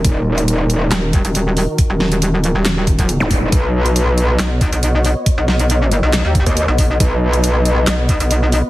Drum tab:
HH |x--xx-x-x-xxx-o-|x--xx-x-x-xxx-o-|x--xx-x-x-xxx-o-|x--xx-x-x-xxx-o-|
CP |--------x-------|--------x-------|--------x-------|--------x-------|
SD |--------o-------|--o-----o-------|--------o-------|--o-----o-------|
BD |o---------o-----|o---------oo--o-|o---------o-----|o---------oo--o-|

HH |x--xx-x-x-xxx-o-|
CP |--------x-------|
SD |--------o-------|
BD |o---------o-----|